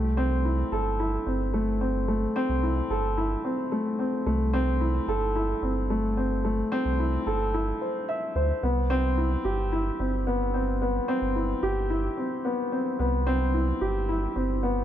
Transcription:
0.00 0.63 C2 loud
0.17 0.43 C4 loud
0.45 0.71 E4 medium
0.72 1.18 G1 medium
0.72 0.88 A4 medium
0.99 1.25 E4 medium
1.26 2.27 G1 loud
1.26 1.53 C4 medium
1.54 1.80 A3 medium
1.81 2.07 C4 medium
2.08 2.24 A3 medium
2.36 2.62 C4 loud
2.49 2.82 C2 medium
2.63 2.89 E4 medium
2.90 3.36 G1 medium
2.90 3.06 A4 medium
3.17 3.43 E4 medium
3.45 3.71 C4 medium
3.72 3.98 A3 medium
3.99 4.25 C4 medium
4.26 5.00 C2 loud
4.26 4.42 A3 medium
4.53 4.80 C4 loud
4.81 5.07 E4 medium
5.08 5.54 G1 medium
5.08 5.24 A4 medium
5.35 5.62 E4 medium
5.62 6.63 G1 medium
5.62 5.89 C4 medium
5.90 6.16 A3 medium
6.17 6.43 C4 medium
6.45 6.60 A3 medium
6.72 6.98 C4 loud
6.85 7.18 C2 medium
6.99 7.25 E4 medium
7.26 7.73 G1 medium
7.26 7.42 A4 medium
7.54 7.80 E4 medium
7.81 8.07 C5 medium
8.09 8.34 E5 medium
8.35 8.52 D2 loud
8.35 8.51 C5 medium
8.63 9.36 C2 loud
8.63 8.79 B3 medium
8.90 9.16 C4 loud
9.18 9.44 E4 medium
9.45 9.91 G1 loud
9.45 9.60 G4 medium
9.72 9.98 E4 medium
9.99 11.00 G1 loud
9.99 10.26 C4 medium
10.27 10.53 B3 medium
10.54 10.80 C4 medium
10.81 10.97 B3 medium
11.08 11.34 C4 loud
11.22 11.54 G1 medium
11.36 11.62 E4 medium
11.63 12.09 G1 loud
11.63 11.79 G4 medium
11.90 12.16 E4 medium
12.17 12.43 C4 medium
12.45 12.71 B3 medium
12.72 12.98 C4 medium
12.99 13.73 C2 loud
12.99 13.15 B3 medium
13.27 13.53 C4 loud
13.54 13.80 E4 medium
13.81 14.27 G1 medium
13.81 13.97 G4 medium
14.09 14.35 E4 medium
14.36 14.84 G1 loud
14.36 14.62 C4 medium
14.63 14.84 B3 medium

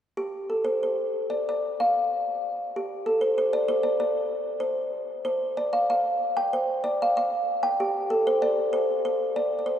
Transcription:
0.17 0.46 G4 medium
0.50 0.65 A4 medium
0.65 0.79 C5 medium
0.83 1.32 C5 medium
1.30 1.47 D5 medium
1.49 1.81 D5 medium
1.80 2.77 F5 medium
2.76 3.07 G4 medium
3.06 3.21 A4 medium
3.21 3.37 C5 medium
3.38 3.53 C5 medium
3.53 3.68 D5 medium
3.68 3.83 C5 medium
3.83 3.99 D5 medium
4.00 4.62 D5 medium
4.60 5.24 C5 medium
5.25 5.57 C5 medium
5.57 5.73 D5 medium
5.73 5.89 F5 medium
5.90 6.39 F5 medium
6.37 6.53 G5 medium
6.53 6.85 C5 medium
6.84 7.00 D5 medium
7.02 7.16 F5 medium
7.17 7.63 F5 medium
7.63 7.78 G5 medium
7.80 8.10 G4 medium
8.10 8.25 A4 medium
8.27 8.41 C5 medium
8.42 8.73 D5 medium
8.73 9.04 C5 medium
9.05 9.36 C5 medium
9.36 9.58 D5 medium
9.59 9.65 D5 soft
9.66 9.79 C5 medium

